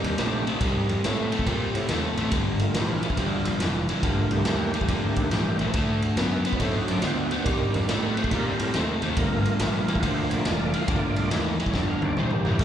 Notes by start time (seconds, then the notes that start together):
Already playing: C3 G3 A#3 D4 D#4 G4
0.04 D#2, ride
0.18 A#1 C3 A3, snare, ride
0.47 C3 A3, ride
0.61 C2 C3 G3 A#3 D4 D#4, kick, ride
0.89 F2, ride
1.04 A2 C3 A3, snare, ride
1.32 C3 A3, ride
1.39 kick
1.46 A#2 C3 G3, kick, ride
1.75 A2, ride
1.89 D#2 C3 A3, snare, ride
2.17 A1 C3 A3, ride
2.32 G1 G2 D3, kick, ride
2.60 A3 A#3 F4, ride
2.74 A#1 G2 E3 G4, snare, ride
2.91 F4
3.00 G2 E3 E4, ride
3.05 F4
3.10 kick
3.17 D2 G2 D3 G4, kick, ride
3.34 F4
3.44 A#1 E4, ride
3.49 F4
3.60 F1 G2 E3 G4, snare, ride
3.77 F4
3.86 G2 E3 E4, ride
3.91 F4
4.03 G1 G2 D3 A3 A#3 F4 G4, kick, ride
4.20 F4
4.31 C2 G4, ride
4.45 D#2 G2 E3, snare, ride
4.74 G2 E3, ride
4.81 kick
4.88 F2 G2 D3, kick, ride
5.16 D#2, kick, ride
5.31 A#1 G2 E3, snare, ride
5.59 A#1 G2 E3, ride
5.74 D2 D3 A3, kick, ride
6.02 ride
6.17 F#2 D3 B3, snare, ride
6.45 D3 F#3 B3 C4 D#4, ride
6.53 kick
6.57 A2 D3 B4, kick, ride
6.61 A3 C5
6.77 F#4
6.88 F#2 D5, ride
7.00 D2 D3 B3 B4, snare, ride
7.05 C5
7.19 F#4
7.31 D3 B3 C5, ride
7.43 C2 C3 D#3 A#3 D4 G4, kick, ride
7.47 G3
7.74 F2, ride
7.89 A2 C3 A3, snare, ride
8.14 C3 B4, ride
8.18 A3 C5
8.24 kick
8.30 A#2 C3 D#3 G3 A#3 D4 A#4, kick, ride
8.47 C5
8.60 A2 A#4, ride
8.74 D#2 C3 A3 C5, snare, ride
8.88 A#4
9.02 D#2 C3 A3 C5, ride
9.13 G1 A3 A#3 F4 A#4, kick, ride
9.18 G2 D3
9.31 A#4
9.46 ride
9.59 A#1 G2 E3, snare, ride
9.88 G2 E3, ride
9.95 B4, kick
10.03 D2 G2 D3 C5, kick, ride
10.29 A#1 C#5, ride
10.34 D5
10.45 F1 G2 E3, snare, ride
10.74 G2 E3 F5, ride
10.87 G1 G2 D3 A3 A#3 F4 D5, kick, ride
11.16 C2, ride
11.31 D#2 G2 E3, snare, ride
11.60 G2 E3, ride
11.66 C#5, kick
11.74 F2 G2 D3 D5, kick, snare
11.90 F5
12.02 D#2 D5, high tom
12.17 A#1 G2 E3 C5, mid tom
12.31 A#3 G4, mid tom
12.45 A#1 G2 E3, floor tom
12.52 floor tom
12.58 G1 G2 D3 A3 A#3 F4 F#4, kick, crash